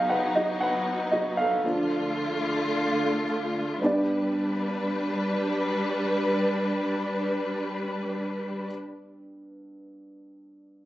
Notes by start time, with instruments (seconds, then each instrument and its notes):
Already playing: string section F#3 B3 D#4, upright piano F#3 B3 D#4 F#4 G#4 D#5 F5
0.09 upright piano B4 F#5
0.35 upright piano F#4 D#5
0.61 upright piano B4 F#5
1.11 upright piano F#4 D#5
1.37 upright piano A4 F5
1.64 string section D3 A3 F4, upright piano F3 A3 D4
3.82 upright piano G2 B3 D4 G4 D5, string section G3 D4 B4